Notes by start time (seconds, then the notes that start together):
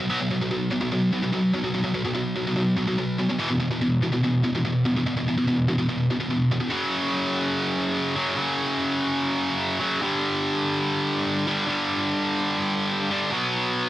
0.00 B2 F#3
0.10 B2 F#3 B3
0.21 B2 F#3
0.31 B2 F#3
0.42 B2 F#3
0.51 B2 F#3
0.71 B2 F#3
0.81 B2 F#3
0.92 B2 F#3
1.12 B2 F#3
1.22 B2 F#3
1.32 B2 F#3
1.54 B2 F#3
1.64 B2 F#3
1.74 B2 F#3
1.84 B2 F#3
1.94 B2 F#3
2.05 B2 F#3
2.14 B2 F#3
2.36 B2 F#3
2.47 B2 F#3
2.56 B2 F#3
2.77 B2 F#3
2.88 B2 F#3
2.98 B2 F#3
3.19 B2 F#3
3.29 B2 F#3
3.39 E2 B2 E3
3.50 E2 B2
3.60 E2 B2
3.71 E2 B2
3.81 E2 B2
4.02 E2 B2
4.12 E2 B2
4.23 E2 B2
4.44 E2 B2
4.55 E2 B2
4.65 E2 B2
4.85 E2 B2
4.96 E2 B2
5.06 E2 B2
5.17 E2 B2
5.28 E2 B2
5.38 E2 B2
5.48 E2 B2
5.68 E2 B2
5.78 E2 B2
5.89 E2 B2
6.10 E2 B2
6.20 E2 B2
6.30 E2 B2
6.52 E2 B2
6.60 E2 B2
6.70 F#2 C#3 F#3
8.16 F#2 C#3 F#3
8.35 F#2 C#3 F#3
9.80 F#2 C#3 F#3
10.01 G2 D3 G3
11.47 G2 D3 G3
11.67 G2 D3 G3
13.10 G2 D3 G3
13.31 B2 F#3 B3